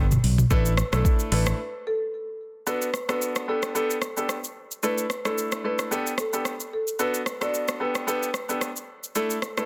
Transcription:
Already playing: fingered electric bass G1
0.11 mid tom, shaker
0.24 fingered electric bass B1, open hi-hat
0.38 mid tom, shaker
0.50 fingered electric bass A1, grand piano A3 D4 E4 A4, marimba B4, kick, shaker
0.66 shaker
0.77 cross-stick, shaker
0.92 fingered electric bass B1, grand piano A3 D4 E4 A4, marimba A4, cross-stick, shaker
1.05 kick, shaker
1.19 shaker
1.31 fingered electric bass A1, grand piano A3 D4 E4 A4, marimba B4, open hi-hat
1.46 cross-stick, shaker
1.87 marimba A4
2.67 grand piano B3 D4 F#4 A4, marimba B4, shaker
2.82 shaker
2.94 cross-stick, shaker
3.09 grand piano B3 D4 F#4 A4, marimba B4, cross-stick, shaker
3.22 shaker
3.36 cross-stick, shaker
3.48 grand piano B3 D4 G4 A4, marimba A4
3.63 cross-stick, shaker
3.75 grand piano B3 D4 G4 A4, marimba A4, shaker
3.90 shaker
4.02 cross-stick, shaker
4.17 grand piano B3 D4 G4 A4, shaker
4.29 cross-stick, shaker
4.44 shaker
4.71 shaker
4.83 grand piano A3 D4 E4 A4, marimba B4, shaker
4.98 shaker
5.10 cross-stick, shaker
5.25 grand piano A3 D4 E4 A4, marimba A4, cross-stick, shaker
5.38 shaker
5.52 cross-stick, shaker
5.64 grand piano A3 D4 E4 A4, marimba B4
5.79 cross-stick, shaker
5.91 grand piano B3 D4 G4 A4, shaker
6.07 shaker
6.18 marimba A4, cross-stick, shaker
6.33 grand piano B3 D4 G4 A4, shaker
6.45 cross-stick, shaker
6.60 shaker
6.73 marimba A4
6.87 shaker
6.99 grand piano B3 D4 F#4 A4, marimba B4, shaker
7.14 shaker
7.26 cross-stick, shaker
7.41 grand piano B3 D4 F#4 A4, marimba D5, cross-stick, shaker
7.54 shaker
7.68 cross-stick, shaker
7.80 grand piano B3 D4 G4 A4, marimba B4
7.95 cross-stick, shaker
8.07 grand piano B3 D4 G4 A4, marimba B4, shaker
8.23 shaker
8.34 cross-stick, shaker
8.49 grand piano B3 D4 G4 A4, shaker
8.61 cross-stick, shaker
8.76 shaker
9.04 shaker
9.15 grand piano A3 D4 E4 A4, marimba A4, shaker
9.30 shaker
9.42 cross-stick, shaker
9.57 grand piano A3 D4 E4 A4, marimba B4, cross-stick, shaker

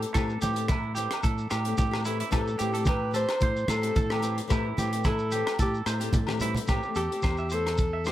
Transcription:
Already playing: alto saxophone A4
0.02 closed hi-hat
0.14 fingered electric bass A2, nylon-string guitar E3 A3 C4 G4, clean electric guitar A4, kick, cross-stick, closed hi-hat, muted conga, low agogo, shekere
0.30 shekere
0.41 fingered electric bass A2, nylon-string guitar E3 A3 C4 G4, clean electric guitar G4, closed hi-hat, muted conga, high conga, shekere
0.54 nylon-string guitar A3 C4 G4, closed hi-hat, shekere
0.68 clean electric guitar E4, kick, cross-stick, closed hi-hat, high conga, low agogo, shekere
0.95 nylon-string guitar E3 A3 C4 G4, clean electric guitar G4, closed hi-hat, muted conga, shekere
1.11 cross-stick, closed hi-hat, low agogo
1.23 fingered electric bass A2, clean electric guitar A4, kick, closed hi-hat, muted conga, shekere
1.38 shekere
1.50 fingered electric bass A2, clean electric guitar G4, cross-stick, closed hi-hat, low agogo, shekere
1.64 nylon-string guitar A3 C4, muted nylon-string guitar stroke, closed hi-hat
1.78 fingered electric bass A2, clean electric guitar G4, kick, closed hi-hat, high conga, low conga, shekere
1.91 nylon-string guitar A3 C4 G4, cross-stick, low agogo
2.05 nylon-string guitar E3 A3 C4 G4, clean electric guitar E4, closed hi-hat, shekere
2.20 clean electric guitar E4, closed hi-hat
2.31 fingered electric bass A2, nylon-string guitar E3 A3 C4 G4, clean electric guitar A4, alto saxophone A4, kick, cross-stick, closed hi-hat, low agogo, shekere
2.48 shekere
2.58 fingered electric bass A2, nylon-string guitar E3 A3 C4 G4, clean electric guitar G4, alto saxophone G4, closed hi-hat, muted conga, shekere
2.73 nylon-string guitar A3 C4 G4, clean electric guitar A4, closed hi-hat, shekere
2.85 clean electric guitar G4, alto saxophone B4, kick, cross-stick, closed hi-hat, high conga, low agogo, shekere
3.11 nylon-string guitar E3 A3 C4 G4, clean electric guitar A4, closed hi-hat, muted conga, shekere
3.16 alto saxophone C5
3.29 cross-stick, closed hi-hat, low agogo
3.41 fingered electric bass A2, clean electric guitar C5, kick, closed hi-hat, muted conga, shekere
3.57 shekere
3.68 fingered electric bass A2, alto saxophone A4, clean electric guitar C5, cross-stick, closed hi-hat, high conga, low agogo, shekere
3.81 nylon-string guitar A3 C4 G4, closed hi-hat
3.96 fingered electric bass A2, clean electric guitar A4, kick, closed hi-hat, high conga, shekere
4.10 nylon-string guitar A3 C4 G4, clean electric guitar G4, cross-stick, low agogo
4.21 nylon-string guitar E3 A3 C4 G4, closed hi-hat, shekere
4.38 closed hi-hat
4.48 fingered electric bass A2, nylon-string guitar E3 A3 C4 G4, clean electric guitar E4, kick, cross-stick, closed hi-hat, muted conga, shekere
4.52 low agogo
4.77 fingered electric bass A2, nylon-string guitar E3 A3 C4 G4, clean electric guitar G4, closed hi-hat, muted conga, high conga, shekere
4.91 nylon-string guitar A3 C4 G4, closed hi-hat, shekere
5.04 clean electric guitar E4, alto saxophone A4, kick, cross-stick, closed hi-hat, high conga, low agogo, shekere
5.19 shekere
5.31 nylon-string guitar E3 A3 C4 G4, clean electric guitar G4, closed hi-hat, muted conga, shekere
5.47 cross-stick, closed hi-hat, low agogo, shekere
5.59 fingered electric bass A2, alto saxophone G4, clean electric guitar A4, kick, closed hi-hat, muted conga, shekere
5.74 shekere
5.86 fingered electric bass A2, clean electric guitar C5, cross-stick, closed hi-hat, low agogo, shekere
6.00 nylon-string guitar A3 C4 G4, closed hi-hat, shekere
6.13 fingered electric bass A2, muted clean electric guitar stroke, kick, closed hi-hat, high conga, low conga, shekere
6.27 nylon-string guitar A3 C4 G4, cross-stick, high conga, low agogo, shekere
6.39 nylon-string guitar E3 A3 C4 G4, clean electric guitar E4, closed hi-hat, low conga, shekere
6.55 muted clean electric guitar stroke, closed hi-hat, low conga, shekere
6.68 fingered electric bass A2, nylon-string guitar E3 A3 C4 G4, clean electric guitar G4, kick, cross-stick, closed hi-hat, low agogo, shekere
6.83 nylon-string guitar C4 G4, shekere
6.88 nylon-string guitar A3
6.95 fingered electric bass E2, alto saxophone G4, clean electric guitar A4, closed hi-hat, shekere
7.11 nylon-string guitar A3 C4 G4, closed hi-hat
7.22 fingered electric bass E2, clean electric guitar C5, kick, cross-stick, closed hi-hat, low agogo, shekere
7.37 clean electric guitar E5, shekere
7.50 nylon-string guitar E3 A3 C4 G4, clean electric guitar C5, closed hi-hat, shekere
7.54 alto saxophone A4
7.66 cross-stick, closed hi-hat, low agogo
7.77 kick, closed hi-hat, shekere
7.93 clean electric guitar E5
8.04 nylon-string guitar E3 A3 C4 G4, alto saxophone G4, clean electric guitar C5, cross-stick, closed hi-hat, low agogo, shekere

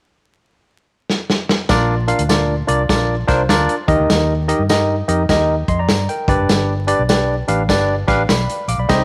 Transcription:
1.10 snare
1.30 snare
1.49 snare
1.69 fingered electric bass A#1, tine electric piano A#2 D4 F4 A#4 D5, kick, snare, closed hi-hat, tambourine
2.07 tine electric piano D4 F4 A#4 F5, closed hi-hat
2.19 fingered electric bass D2, closed hi-hat
2.29 tine electric piano D4 F4 A#4 D5, snare, closed hi-hat, tambourine
2.67 fingered electric bass C2, tine electric piano D4 F4 A#4 D5, closed hi-hat
2.89 fingered electric bass A#1, tine electric piano D4 F4 A#4 D5, kick, snare, closed hi-hat, tambourine
3.27 fingered electric bass C2, tine electric piano D4 F4 A#4 C5, kick, snare, closed hi-hat
3.49 fingered electric bass D2, tine electric piano D4 F4 A#4 D5, snare, closed hi-hat, tambourine
3.69 closed hi-hat
3.88 fingered electric bass D#2, tine electric piano D#3 D#4 G4 A#4 D#5, kick, closed hi-hat
4.00 fingered electric bass D2
4.10 fingered electric bass D#2, snare, closed hi-hat, tambourine
4.48 tine electric piano D#4 G4 A#4 D#5, closed hi-hat
4.59 fingered electric bass G2
4.69 tine electric piano D#4 G4 A#4 D#5, snare, closed hi-hat, tambourine
5.08 fingered electric bass F2, tine electric piano D#4 G4 A#4 D#5, closed hi-hat
5.29 fingered electric bass D#2, tine electric piano D#4 G4 A#4 D#5, kick, snare, closed hi-hat, tambourine
5.68 fingered electric bass F2, tine electric piano D#5 C6, kick, closed hi-hat
5.79 tine electric piano D5 A#5
5.89 fingered electric bass G2, snare, closed hi-hat, tambourine
6.09 tine electric piano A#4 G5, closed hi-hat
6.28 fingered electric bass G1, tine electric piano G2 D4 G4 B4 D5, kick, closed hi-hat
6.39 fingered electric bass F#1
6.49 fingered electric bass G1, snare, closed hi-hat, tambourine
6.87 tine electric piano D4 G4 B4 D5, closed hi-hat
6.99 fingered electric bass B1
7.09 tine electric piano D4 G4 B4 D5, snare, closed hi-hat, tambourine
7.48 fingered electric bass A1, tine electric piano D4 G4 B4 F5, closed hi-hat
7.69 fingered electric bass G1, tine electric piano D4 G4 B4 D5, kick, snare, closed hi-hat, tambourine
8.07 fingered electric bass A1, tine electric piano D4 G4 B4 F5, kick, snare, closed hi-hat
8.29 fingered electric bass B1, tine electric piano D5 B5, snare, closed hi-hat, tambourine
8.49 closed hi-hat
8.68 fingered electric bass A#1, tine electric piano F5 D6, closed hi-hat
8.78 fingered electric bass B1, tine electric piano D5 B5
8.89 fingered electric bass C2, tine electric piano C3 D#4 G4 C5 D#5, kick, snare, closed hi-hat, tambourine

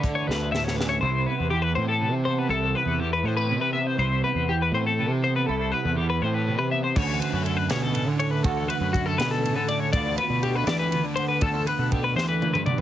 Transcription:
Already playing: clean electric guitar D2 E4, fingered electric bass D3
0.01 clean electric guitar D3, kick, closed hi-hat
0.15 clean electric guitar C#5
0.27 fingered electric bass D2, clean electric guitar A3 B4, snare
0.52 clean electric guitar A2 E5, snare
0.64 clean electric guitar C#5, snare
0.76 clean electric guitar C#4 B4
0.81 snare
0.89 clean electric guitar C#5
1.01 fingered electric bass C2, clean electric guitar C3 E4 C5
1.27 clean electric guitar B3 B4
1.40 fingered electric bass E2
1.50 clean electric guitar E3 G4
1.62 clean electric guitar B4
1.75 fingered electric bass A2, clean electric guitar C4 C5
1.89 clean electric guitar A4
2.01 clean electric guitar C3
2.12 fingered electric bass C3
2.25 clean electric guitar B3 C5
2.39 clean electric guitar B4
2.49 fingered electric bass C2, clean electric guitar C3 E4 A4
2.75 clean electric guitar B3 B4
2.85 fingered electric bass E2
2.99 clean electric guitar E3 G4
3.13 clean electric guitar B4
3.23 fingered electric bass A2, clean electric guitar A3 C5
3.37 clean electric guitar C4 B4
3.51 clean electric guitar C3
3.60 fingered electric bass C3, clean electric guitar B4
3.73 clean electric guitar B3 E5
3.87 clean electric guitar C5
3.98 fingered electric bass C2, clean electric guitar C3 E4 C5
4.24 clean electric guitar B3 B4
4.35 fingered electric bass E2
4.49 clean electric guitar E3 G4
4.62 clean electric guitar B4
4.72 fingered electric bass A2, clean electric guitar C4 C5
4.87 clean electric guitar A4
4.99 clean electric guitar C3
5.09 fingered electric bass C3
5.24 clean electric guitar B3 C5
5.36 clean electric guitar B4
5.46 fingered electric bass C2, clean electric guitar C3 E4 A4
5.72 clean electric guitar B3 B4
5.85 fingered electric bass E2
5.96 clean electric guitar E3 G4
6.10 clean electric guitar B4
6.22 fingered electric bass A2, clean electric guitar C4 C5
6.34 clean electric guitar B4
6.48 clean electric guitar C3
6.59 fingered electric bass C3, clean electric guitar B4
6.71 clean electric guitar B3 E5
6.84 clean electric guitar C5
6.96 fingered electric bass D2, clean electric guitar D2 D3 A3 C#4 F#4 C#5, kick, crash
7.20 clean electric guitar A3 B4, ride
7.33 fingered electric bass F#2
7.44 clean electric guitar D3 A4, ride
7.57 clean electric guitar B4
7.70 fingered electric bass B2, clean electric guitar C#4 C#5, snare, ride
7.83 clean electric guitar A4
7.94 clean electric guitar A2, ride
8.08 fingered electric bass D3
8.19 clean electric guitar A3 C#5, ride
8.31 clean electric guitar B4
8.43 clean electric guitar D2 F#4 A4, fingered electric bass D2, kick, ride
8.68 clean electric guitar A3 B4, ride
8.80 fingered electric bass F#2
8.93 clean electric guitar D3 F#4, kick, ride
9.06 clean electric guitar A4
9.18 fingered electric bass B2, clean electric guitar C#4 B4, snare, ride
9.31 clean electric guitar A4
9.43 clean electric guitar A2, ride
9.56 fingered electric bass D3, clean electric guitar A4
9.68 clean electric guitar A3 D5, ride
9.80 clean electric guitar C#5
9.93 clean electric guitar D2 D3 B3 F4 D5, fingered electric bass D2, kick, ride
10.18 clean electric guitar B3 B4, ride
10.29 fingered electric bass B2
10.43 clean electric guitar D3 G4, ride
10.55 clean electric guitar B4
10.67 fingered electric bass E3, clean electric guitar D5, snare, ride
10.79 clean electric guitar B4
10.92 clean electric guitar D2, ride
11.05 fingered electric bass D3
11.16 clean electric guitar B3 C5, ride
11.28 clean electric guitar B4
11.41 fingered electric bass D2, clean electric guitar D2 D4 A4, kick, ride
11.54 clean electric guitar F4
11.67 clean electric guitar B3 B4, ride
11.78 fingered electric bass B2
11.91 clean electric guitar D3 G4, kick, ride
12.04 clean electric guitar B4
12.15 fingered electric bass E3, clean electric guitar C5, snare
12.29 clean electric guitar B4
12.42 clean electric guitar D2, high tom
12.53 fingered electric bass G2, clean electric guitar B4, mid tom
12.66 clean electric guitar B3 D5, mid tom
12.78 floor tom

